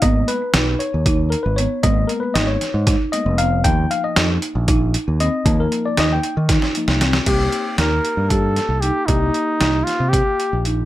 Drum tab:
CC |--------------|--------------|--------------|--------------|
HH |x-x-x-x-x-x-x-|x-x-x-x-x-x-x-|x-x-x-x-x-x-x-|x-x-x-x-x-x-x-|
SD |----o---------|----o-o-o-----|----o---------|----o---oo-ooo|
BD |o-------o-----|o-------o-----|o-------o-----|o-------o-----|

CC |x-------------|--------------|
HH |x-x-x-x-x-x-x-|x-x-x-x-x-x-x-|
SD |----o-----o---|----o-o-------|
BD |o-------o-----|o-------o-----|